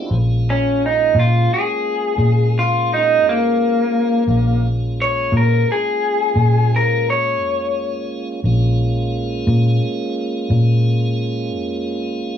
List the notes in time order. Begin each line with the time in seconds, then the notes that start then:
Already playing: E4
0.01 G4 A4
0.06 B4 C5
0.11 A#1 G#3 A#3 C#4 F4
0.50 C#4
0.86 D#4
1.15 A#2
1.19 F4
1.54 G#4
2.18 A#2
2.59 F4
2.94 D#4
3.23 F2
3.29 A#3
4.27 A#1 G#3 A#3 C#4 F4
5.02 C#5
5.32 A#2
5.37 A#4
5.72 G#4
6.35 A#2
6.76 A#4
7.10 C#5
7.40 F2
8.44 A#1 G#3 A#3 C#4 F4
9.47 A#2
10.50 A#2
11.55 F2